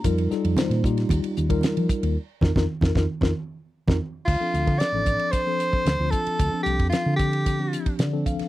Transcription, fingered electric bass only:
0.04 F2
0.31 muted fingered electric bass stroke
0.45 F2
0.70 A#2
1.10 D#2
1.24 muted fingered electric bass stroke
1.38 D#2
1.77 F3
1.89 muted fingered electric bass stroke
2.03 D#2
2.43 F2
2.56 F2
2.83 F2
2.96 F2
3.22 F2
3.88 F2
4.28 D2
4.54 D2
4.67 D3
4.92 A1
5.73 muted fingered electric bass stroke
5.85 D2
5.99 D2
6.27 muted fingered electric bass stroke
6.40 D2
6.53 muted fingered electric bass stroke
6.66 C2
6.80 F2
6.93 muted fingered electric bass stroke
7.06 D3
7.86 muted fingered electric bass stroke
7.99 D3
8.26 D2
8.40 muted fingered electric bass stroke

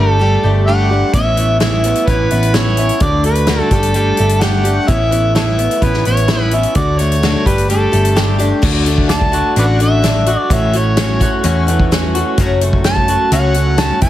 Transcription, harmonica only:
Already playing: A4
0.66 F#5
1.14 E5
1.60 E5
2.06 B4
2.55 C#5
3.02 D5
3.25 B4
3.60 A4
3.73 A4
4.42 F#5
4.89 E5
5.35 A4 C#5 E5
5.83 B4
6.06 C#5
6.42 B4
6.54 E5
6.76 D5
6.99 C#5
7.47 B4
7.69 A4
9.09 D5 F#5 A5
9.59 B4 D5 F#5
9.82 E5
10.30 D5
10.53 E5
10.77 C#5
12.85 A5
13.32 F#5
13.79 A5
14.02 A5

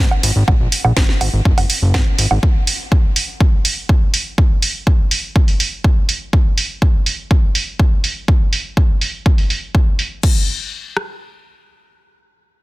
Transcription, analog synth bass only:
0.23 G#1
0.36 G#1
0.48 A#1
0.60 A#1
0.85 A#1
0.97 G#1
1.21 G#1
1.33 G#1
1.45 F#1
1.58 F#1
1.82 F#1
1.94 G#1
2.19 G#1
2.31 G#1

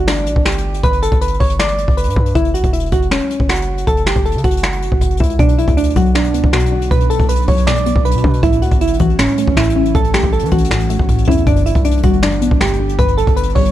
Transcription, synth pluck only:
5.39 B2
5.96 F#3
6.15 B2
6.34 B3
6.53 B2
6.72 D4
6.91 B2
7.48 F#3
7.67 B2
7.86 B3
8.05 B2
8.24 D4
8.43 A2
9.00 E3
9.19 A2
9.38 A3
9.57 A2
9.76 C#4
9.95 A2
10.52 E3
10.70 A2
10.90 A3
11.09 A2
11.28 C#4
11.47 G2
12.03 G3
12.23 G2
12.42 B3
12.60 G2
12.80 D4
12.98 G2
13.56 G3

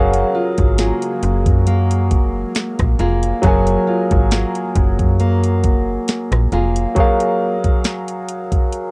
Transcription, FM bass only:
Already playing: F#1
0.58 G#1
1.23 F#1
1.46 F#2
2.11 F#1
2.80 A#1
2.99 F1
3.43 F#1
4.11 G#1
4.76 F#1
4.99 F#2
5.64 F#1
6.32 A#1
6.52 F1

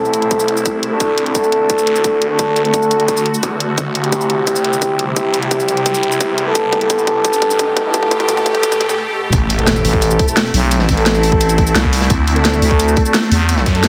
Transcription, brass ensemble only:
Already playing: C4 E4 A4
0.92 D4 F#4 A4
1.26 D4 F#4 A4
2.30 D4 F#4 A4
2.65 D4 F#4 A4
4.04 C4 E4 G4
5.08 C4 E4 G4
5.42 C4 E4 G4
6.47 B3 G4 A4
6.81 B3 G4 A4
7.85 B3 G4 A4
8.20 B3 G4 A4
8.89 B3 G4 A4
9.59 C4 E4 A4
10.28 C4 E4 A4
10.97 C4 E4 A4
11.67 C4 E4 A4
12.36 D4 F#4 A4
13.05 D4 F#4 A4
13.75 D4 F#4 A4

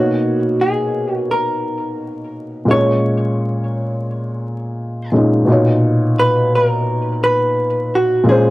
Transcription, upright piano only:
Already playing: B2 A#3 D#4 C#5
2.65 A#2 G#3
2.70 C#4 C#5
5.12 A#2 G#3 C#4 D#4
5.45 A#2 B2
5.50 D#4 C#5
8.24 A#2 G#3
8.29 C#4 C5

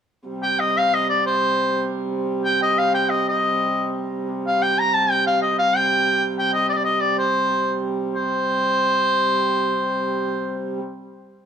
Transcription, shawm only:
0.43 G5
0.59 D#5
0.77 F5
0.94 D#5
1.09 D5
1.26 C5
2.45 G5
2.62 D#5
2.78 F5
2.94 G5
3.10 D#5
3.29 D#5
4.47 F5
4.62 G5
4.79 A#5
4.94 A5
5.11 G5
5.27 F5
5.42 D#5
5.59 F5
5.76 G5
6.38 G5
6.54 D#5
6.69 D5 D#5
6.77 D5
6.85 D#5
7.01 D5
7.18 C5
8.15 C5

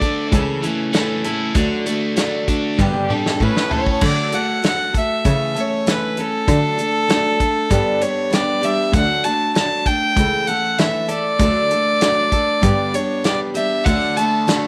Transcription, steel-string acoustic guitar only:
0.02 A3 D4 A4
0.32 C#3 E3 A3 C#4 A4
0.63 A3 C#4 A4
0.93 E3 A3 C#4 A4
1.25 A3 C#4 A4
1.56 D3 F#3 A3 D4 F#4
1.86 A3 D4 F#4
2.16 F#3 A3 D4 F#4
2.48 A3 D4 F#4
2.79 G2 D3 G3 B3 D4 G4
3.10 G3 B3 D4 G4
3.41 A3 C#4 E4 A4
3.71 A3 C#4 E4 A4
4.01 D3 F#3 A3 F#4 A4
4.32 A3 F#4 A4
4.62 F#3 A3 F#4 A4
4.93 A3 F#4 A4
5.25 C#3 E3 A3 C#4 A4
5.54 A3 C#4 A4
5.86 E3 A3 C#4 A4
6.18 A3 C#4 A4
6.48 D3 F#3 A3 D4 A4
6.78 A3 D4 A4
7.08 F#3 A3 D4 A4
7.39 A3 D4 A4
7.70 G2 D3 G3 B3 D4 G4
8.01 G3 B3 D4 G4
8.31 G3 B3 D4 G4
8.61 G3 B3 D4 G4
8.94 D3 F#3 A3 D4 F#4
9.25 A3 D4 F#4
9.56 F#3 A3 D4 F#4
9.88 A3 D4
10.18 C#3 E3 A3 C#4 A4
10.48 A3 C#4 A4
10.78 E3 A3 C#4 A4
11.08 A3 A4
11.41 D3 F#3 A3 D4 A4
11.71 A3 D4 A4
12.02 F#3 A3 D4 A4
12.32 A3 D4 A4
12.63 G2 D3 G3 B3 D4 G4
12.93 G3 B3 D4 G4
13.24 G3 B3 D4 G4
13.54 G3 B3 D4 G4
13.86 D3 F#3 A3 D4 A4
14.17 A3 D4 A4
14.47 F#3 A3 D4 A4

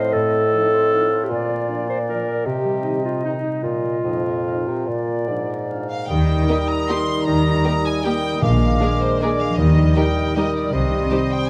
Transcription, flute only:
Already playing: D#5
1.30 D5
2.46 D#5
4.86 D5
6.09 D#6
7.27 D#6
8.05 D#6
8.42 D6
9.21 D6
9.58 D#6
9.97 D#6
10.38 D#6
10.74 D#6

